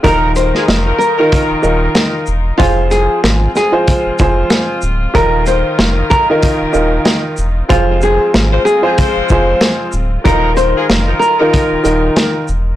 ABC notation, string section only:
X:1
M:4/4
L:1/8
Q:"Swing 16ths" 1/4=94
K:Ebmix
V:1 name="String section"
[E,EFB]8 | [A,CF]8 | [E,EB]8 | [A,CF]8 |
[E,EFB]8 |]